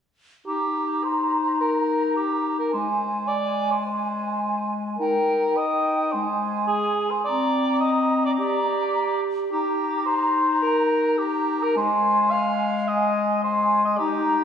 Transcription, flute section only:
0.47 2.70 A#5 soft
2.71 4.98 G#5 soft
5.00 6.10 G5 soft
6.13 7.26 G#5 soft
7.25 9.18 A#5 soft
9.49 10.58 A#5 soft
10.62 11.16 A#5 soft
11.17 11.73 A#5 soft
11.75 12.67 G#5 soft
12.89 13.42 G#5 soft
13.43 13.99 G#5 soft
13.99 14.44 A#5 soft

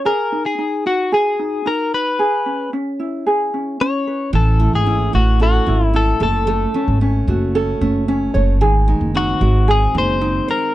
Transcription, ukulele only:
0.00 0.10 C#4 medium
0.00 0.85 F#4 soft
0.00 0.10 C#5 medium
0.05 1.12 G#4 medium
0.32 0.57 D#4 medium
0.58 1.38 D#4 medium
0.86 2.25 F#4 soft
1.12 2.19 G#4 medium
1.39 1.64 D#4 medium
1.66 2.24 D#4 medium
2.19 3.25 G#4 medium
2.46 2.73 C#4 soft
2.73 3.53 C#4 medium
2.99 4.39 E4 soft
3.27 4.33 G#4 medium
3.54 3.80 C#4 medium
3.81 6.75 C#4 medium
4.07 4.39 B4 medium
4.60 4.86 E4 soft
4.87 5.14 E4 medium
5.15 5.67 F#4 soft
5.41 6.21 A4 medium
5.68 5.93 E4 medium
5.94 6.26 E4 medium
6.21 6.47 A4 medium
6.48 7.54 A4 medium
6.75 7.01 C#4 soft
7.02 7.80 C#4 medium
7.29 9.42 F#4 soft
7.55 8.34 A4 medium
7.81 8.07 C#4 medium
8.08 8.67 C#4 medium
8.34 8.66 C#5 medium
8.61 9.68 G#4 medium
8.89 9.14 D#4 soft
9.16 9.93 D#4 medium
9.42 10.74 F#4 soft
9.68 10.74 G#4 medium
9.95 10.20 D#4 medium
10.22 10.74 D#4 medium
10.48 10.74 C5 medium

